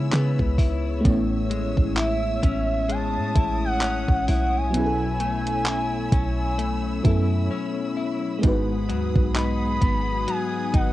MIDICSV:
0, 0, Header, 1, 8, 480
1, 0, Start_track
1, 0, Tempo, 923077
1, 545, Time_signature, 4, 2, 24, 8
1, 5683, End_track
2, 0, Start_track
2, 0, Title_t, "String section"
2, 0, Program_c, 0, 48
2, 0, Note_on_c, 0, 73, 77
2, 0, Note_on_c, 0, 83, 74
2, 0, Note_on_c, 0, 88, 87
2, 523, Note_off_c, 0, 83, 0
2, 527, Note_off_c, 0, 88, 0
2, 545, Note_on_c, 0, 88, 94
2, 546, Note_on_c, 0, 76, 73
2, 1496, Note_off_c, 0, 88, 0
2, 1506, Note_on_c, 0, 87, 92
2, 2456, Note_off_c, 0, 87, 0
2, 2466, Note_on_c, 0, 88, 90
2, 2469, Note_on_c, 0, 83, 75
2, 4365, Note_off_c, 0, 73, 0
2, 4365, Note_off_c, 0, 76, 0
2, 4367, Note_off_c, 0, 88, 0
2, 4385, Note_on_c, 0, 68, 83
2, 4385, Note_on_c, 0, 87, 88
2, 4386, Note_on_c, 0, 78, 69
2, 5683, Note_off_c, 0, 68, 0
2, 5683, Note_off_c, 0, 78, 0
2, 5683, Note_off_c, 0, 83, 0
2, 5683, Note_off_c, 0, 87, 0
2, 5683, End_track
3, 0, Start_track
3, 0, Title_t, "Soft synth lead"
3, 0, Program_c, 1, 80
3, 0, Note_on_c, 1, 80, 115
3, 286, Note_off_c, 1, 80, 0
3, 1033, Note_on_c, 1, 76, 106
3, 1513, Note_on_c, 1, 81, 114
3, 1520, Note_off_c, 1, 76, 0
3, 1888, Note_off_c, 1, 81, 0
3, 1896, Note_on_c, 1, 78, 111
3, 2210, Note_off_c, 1, 78, 0
3, 2238, Note_on_c, 1, 78, 99
3, 2375, Note_on_c, 1, 80, 105
3, 2383, Note_off_c, 1, 78, 0
3, 4151, Note_off_c, 1, 80, 0
3, 4874, Note_on_c, 1, 83, 122
3, 5354, Note_on_c, 1, 80, 105
3, 5362, Note_off_c, 1, 83, 0
3, 5592, Note_on_c, 1, 78, 107
3, 5599, Note_off_c, 1, 80, 0
3, 5683, Note_off_c, 1, 78, 0
3, 5683, End_track
4, 0, Start_track
4, 0, Title_t, "FM electric piano"
4, 0, Program_c, 2, 5
4, 0, Control_c, 2, 64, 127
4, 0, Note_on_c, 2, 52, 62
4, 0, Note_on_c, 2, 59, 55
4, 0, Note_on_c, 2, 61, 58
4, 0, Note_on_c, 2, 63, 57
4, 0, Note_on_c, 2, 68, 71
4, 514, Note_off_c, 2, 52, 0
4, 519, Note_off_c, 2, 59, 0
4, 523, Note_on_c, 2, 57, 78
4, 525, Note_off_c, 2, 61, 0
4, 531, Note_off_c, 2, 63, 0
4, 536, Note_on_c, 2, 59, 70
4, 538, Note_off_c, 2, 68, 0
4, 548, Note_on_c, 2, 61, 70
4, 551, Control_c, 2, 64, 0
4, 561, Note_on_c, 2, 64, 70
4, 573, Note_on_c, 2, 73, 85
4, 654, Control_c, 2, 64, 127
4, 2434, Note_off_c, 2, 57, 0
4, 2440, Note_off_c, 2, 59, 0
4, 2444, Note_on_c, 2, 54, 62
4, 2446, Note_off_c, 2, 61, 0
4, 2452, Note_off_c, 2, 64, 0
4, 2456, Note_on_c, 2, 59, 59
4, 2458, Note_off_c, 2, 73, 0
4, 2468, Note_on_c, 2, 61, 59
4, 2472, Control_c, 2, 64, 0
4, 2481, Note_on_c, 2, 64, 58
4, 2493, Note_on_c, 2, 68, 58
4, 2518, Note_off_c, 2, 68, 0
4, 2526, Note_on_c, 2, 69, 69
4, 2557, Control_c, 2, 64, 127
4, 3634, Note_off_c, 2, 54, 0
4, 3640, Note_off_c, 2, 59, 0
4, 3646, Note_off_c, 2, 61, 0
4, 3652, Note_off_c, 2, 64, 0
4, 3655, Note_on_c, 2, 54, 60
4, 3660, Note_on_c, 2, 59, 55
4, 3667, Note_on_c, 2, 61, 53
4, 3673, Note_off_c, 2, 69, 0
4, 3673, Note_on_c, 2, 64, 56
4, 3679, Note_on_c, 2, 69, 66
4, 4362, Note_on_c, 2, 56, 76
4, 4368, Note_off_c, 2, 59, 0
4, 4375, Note_on_c, 2, 59, 66
4, 4380, Note_off_c, 2, 54, 0
4, 4386, Note_off_c, 2, 61, 0
4, 4386, Note_on_c, 2, 63, 70
4, 4389, Note_off_c, 2, 64, 0
4, 4392, Note_off_c, 2, 69, 0
4, 4392, Control_c, 2, 64, 0
4, 4399, Note_on_c, 2, 66, 67
4, 4411, Note_on_c, 2, 71, 85
4, 4499, Control_c, 2, 64, 127
4, 5683, Note_off_c, 2, 56, 0
4, 5683, Note_off_c, 2, 59, 0
4, 5683, Note_off_c, 2, 63, 0
4, 5683, Note_off_c, 2, 66, 0
4, 5683, Note_off_c, 2, 71, 0
4, 5683, End_track
5, 0, Start_track
5, 0, Title_t, "Clean electric guitar"
5, 0, Program_c, 3, 27
5, 0, Note_on_c, 3, 49, 83
5, 0, Note_on_c, 3, 56, 71
5, 0, Note_on_c, 3, 59, 63
5, 0, Note_on_c, 3, 64, 66
5, 56, Note_off_c, 3, 59, 0
5, 62, Note_on_c, 3, 59, 64
5, 301, Note_off_c, 3, 64, 0
5, 303, Note_on_c, 3, 64, 67
5, 543, Note_on_c, 3, 45, 85
5, 545, Note_off_c, 3, 49, 0
5, 599, Note_off_c, 3, 59, 0
5, 780, Note_off_c, 3, 56, 0
5, 782, Note_on_c, 3, 56, 67
5, 1020, Note_off_c, 3, 64, 0
5, 1022, Note_on_c, 3, 64, 74
5, 1262, Note_on_c, 3, 61, 64
5, 1496, Note_off_c, 3, 56, 0
5, 1503, Note_on_c, 3, 56, 71
5, 1743, Note_off_c, 3, 64, 0
5, 1745, Note_on_c, 3, 64, 74
5, 1984, Note_off_c, 3, 61, 0
5, 1986, Note_on_c, 3, 61, 61
5, 2223, Note_off_c, 3, 64, 0
5, 2226, Note_on_c, 3, 64, 65
5, 2463, Note_off_c, 3, 45, 0
5, 2465, Note_on_c, 3, 47, 84
5, 2520, Note_off_c, 3, 56, 0
5, 2705, Note_on_c, 3, 57, 61
5, 2942, Note_off_c, 3, 64, 0
5, 2944, Note_on_c, 3, 64, 70
5, 3182, Note_off_c, 3, 61, 0
5, 3184, Note_on_c, 3, 61, 61
5, 3417, Note_off_c, 3, 57, 0
5, 3423, Note_on_c, 3, 57, 71
5, 3658, Note_off_c, 3, 64, 0
5, 3665, Note_on_c, 3, 64, 69
5, 3898, Note_off_c, 3, 61, 0
5, 3904, Note_on_c, 3, 61, 61
5, 4137, Note_off_c, 3, 64, 0
5, 4144, Note_on_c, 3, 64, 62
5, 4382, Note_off_c, 3, 47, 0
5, 4384, Note_on_c, 3, 44, 80
5, 4440, Note_off_c, 3, 57, 0
5, 4440, Note_off_c, 3, 61, 0
5, 4440, Note_off_c, 3, 64, 0
5, 4622, Note_on_c, 3, 54, 62
5, 4865, Note_on_c, 3, 63, 68
5, 5105, Note_on_c, 3, 59, 62
5, 5338, Note_off_c, 3, 54, 0
5, 5345, Note_on_c, 3, 54, 74
5, 5579, Note_off_c, 3, 63, 0
5, 5586, Note_on_c, 3, 63, 67
5, 5683, Note_off_c, 3, 44, 0
5, 5683, Note_off_c, 3, 54, 0
5, 5683, Note_off_c, 3, 59, 0
5, 5683, Note_off_c, 3, 63, 0
5, 5683, End_track
6, 0, Start_track
6, 0, Title_t, "808-style bass"
6, 0, Program_c, 4, 38
6, 0, Note_on_c, 4, 49, 103
6, 56, Note_off_c, 4, 49, 0
6, 67, Note_on_c, 4, 49, 109
6, 200, Note_off_c, 4, 49, 0
6, 205, Note_on_c, 4, 37, 98
6, 532, Note_off_c, 4, 37, 0
6, 547, Note_on_c, 4, 33, 106
6, 910, Note_off_c, 4, 33, 0
6, 922, Note_on_c, 4, 33, 101
6, 1250, Note_off_c, 4, 33, 0
6, 1265, Note_on_c, 4, 33, 106
6, 1648, Note_on_c, 4, 45, 101
6, 1655, Note_off_c, 4, 33, 0
6, 1742, Note_off_c, 4, 45, 0
6, 1745, Note_on_c, 4, 33, 102
6, 2109, Note_off_c, 4, 33, 0
6, 2124, Note_on_c, 4, 33, 95
6, 2221, Note_off_c, 4, 33, 0
6, 2230, Note_on_c, 4, 35, 103
6, 3167, Note_off_c, 4, 35, 0
6, 3183, Note_on_c, 4, 35, 105
6, 3645, Note_off_c, 4, 35, 0
6, 3666, Note_on_c, 4, 42, 106
6, 3896, Note_off_c, 4, 42, 0
6, 4387, Note_on_c, 4, 32, 92
6, 4627, Note_on_c, 4, 39, 93
6, 4635, Note_off_c, 4, 32, 0
6, 4759, Note_off_c, 4, 39, 0
6, 4762, Note_on_c, 4, 35, 103
6, 5090, Note_off_c, 4, 35, 0
6, 5105, Note_on_c, 4, 32, 101
6, 5335, Note_off_c, 4, 32, 0
6, 5585, Note_on_c, 4, 32, 112
6, 5683, Note_off_c, 4, 32, 0
6, 5683, End_track
7, 0, Start_track
7, 0, Title_t, "Downlifter"
7, 0, Program_c, 5, 103
7, 0, Note_on_c, 5, 60, 82
7, 545, Note_off_c, 5, 60, 0
7, 5683, End_track
8, 0, Start_track
8, 0, Title_t, "Drums"
8, 64, Note_on_c, 9, 39, 101
8, 68, Note_on_c, 9, 42, 63
8, 116, Note_off_c, 9, 39, 0
8, 120, Note_off_c, 9, 42, 0
8, 204, Note_on_c, 9, 36, 94
8, 256, Note_off_c, 9, 36, 0
8, 303, Note_on_c, 9, 36, 91
8, 306, Note_on_c, 9, 46, 69
8, 355, Note_off_c, 9, 36, 0
8, 358, Note_off_c, 9, 46, 0
8, 546, Note_on_c, 9, 36, 123
8, 546, Note_on_c, 9, 42, 72
8, 598, Note_off_c, 9, 36, 0
8, 598, Note_off_c, 9, 42, 0
8, 785, Note_on_c, 9, 42, 58
8, 837, Note_off_c, 9, 42, 0
8, 921, Note_on_c, 9, 36, 93
8, 973, Note_off_c, 9, 36, 0
8, 1022, Note_on_c, 9, 39, 122
8, 1074, Note_off_c, 9, 39, 0
8, 1263, Note_on_c, 9, 36, 88
8, 1264, Note_on_c, 9, 42, 66
8, 1315, Note_off_c, 9, 36, 0
8, 1316, Note_off_c, 9, 42, 0
8, 1505, Note_on_c, 9, 42, 72
8, 1557, Note_off_c, 9, 42, 0
8, 1744, Note_on_c, 9, 36, 98
8, 1744, Note_on_c, 9, 42, 60
8, 1796, Note_off_c, 9, 36, 0
8, 1796, Note_off_c, 9, 42, 0
8, 1982, Note_on_c, 9, 39, 105
8, 1985, Note_on_c, 9, 42, 67
8, 2034, Note_off_c, 9, 39, 0
8, 2037, Note_off_c, 9, 42, 0
8, 2124, Note_on_c, 9, 36, 91
8, 2176, Note_off_c, 9, 36, 0
8, 2226, Note_on_c, 9, 46, 68
8, 2278, Note_off_c, 9, 46, 0
8, 2466, Note_on_c, 9, 42, 70
8, 2518, Note_off_c, 9, 42, 0
8, 2704, Note_on_c, 9, 42, 49
8, 2756, Note_off_c, 9, 42, 0
8, 2843, Note_on_c, 9, 42, 49
8, 2895, Note_off_c, 9, 42, 0
8, 2941, Note_on_c, 9, 39, 127
8, 2993, Note_off_c, 9, 39, 0
8, 3183, Note_on_c, 9, 36, 90
8, 3183, Note_on_c, 9, 42, 65
8, 3235, Note_off_c, 9, 36, 0
8, 3235, Note_off_c, 9, 42, 0
8, 3427, Note_on_c, 9, 42, 70
8, 3479, Note_off_c, 9, 42, 0
8, 3665, Note_on_c, 9, 36, 91
8, 3665, Note_on_c, 9, 42, 57
8, 3717, Note_off_c, 9, 36, 0
8, 3717, Note_off_c, 9, 42, 0
8, 4385, Note_on_c, 9, 42, 75
8, 4386, Note_on_c, 9, 36, 115
8, 4437, Note_off_c, 9, 42, 0
8, 4438, Note_off_c, 9, 36, 0
8, 4626, Note_on_c, 9, 42, 59
8, 4678, Note_off_c, 9, 42, 0
8, 4762, Note_on_c, 9, 36, 89
8, 4814, Note_off_c, 9, 36, 0
8, 4865, Note_on_c, 9, 39, 123
8, 4917, Note_off_c, 9, 39, 0
8, 5103, Note_on_c, 9, 36, 87
8, 5105, Note_on_c, 9, 42, 61
8, 5155, Note_off_c, 9, 36, 0
8, 5157, Note_off_c, 9, 42, 0
8, 5346, Note_on_c, 9, 42, 76
8, 5398, Note_off_c, 9, 42, 0
8, 5584, Note_on_c, 9, 36, 97
8, 5584, Note_on_c, 9, 42, 59
8, 5636, Note_off_c, 9, 36, 0
8, 5636, Note_off_c, 9, 42, 0
8, 5683, End_track
0, 0, End_of_file